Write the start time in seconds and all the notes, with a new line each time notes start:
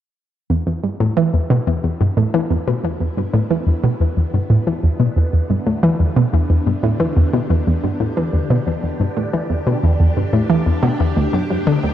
0.49 E2 D3
0.67 E2
0.84 G2
1.00 A2
1.13 E3 B3
1.34 E2
1.50 B2
1.67 E2 E4
1.84 E2
2.01 G2
2.17 A2
2.22 G4
2.34 E3
2.50 E2
2.68 B2
2.84 E2
3.00 E2
3.17 G2
3.34 A2
3.50 E3
3.67 E2
3.84 B2
4.00 E2
4.17 E2
4.34 G2
4.50 A2
4.67 E3
4.83 E2
5.00 B2
5.16 E2
5.33 E2
5.50 G2
5.66 A2
5.83 E3
6.00 E2
6.16 B2
6.33 E2
6.50 E2
6.66 G2
6.83 A2
7.00 E3
7.17 E2
7.21 D4
7.33 B2
7.50 E2
7.67 E2
7.83 G2
8.00 A2
8.17 E3
8.33 E2
8.50 B2
8.67 E2
8.83 E2
9.00 G2
9.17 A2
9.33 E3
9.50 E2
9.67 B2
9.83 E2
10.00 E2
10.17 G2
10.33 A2
10.50 E3
10.66 E2
10.83 B2
11.00 E2
11.17 D2 C3
11.34 F#2 A3
11.50 F#2
11.67 D3
11.84 D2